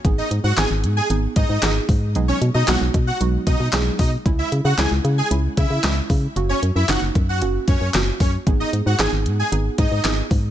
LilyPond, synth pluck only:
\new Staff \with { instrumentName = "Synth pluck" } { \time 4/4 \key gis \minor \tempo 4 = 114 <b dis' gis'>4 <b dis' gis'>4 <b dis' gis'>4 <b dis' gis'>4 | <fis gis b dis' gis'>4 <fis gis b dis' fis'>4 <fis gis b dis' fis'>4 <fis gis b dis' gis'>4 | <gis cis' e'>4 <gis cis' e'>4 <gis cis' e'>4 <gis cis' e'>4 | <ais cis' fis'>4 <ais cis' dis'>4 <ais cis' fis'>4 <ais cis' fis'>4 |
<b dis' gis'>4 <b dis' gis'>4 <b dis' gis'>4 <b dis' gis'>4 | }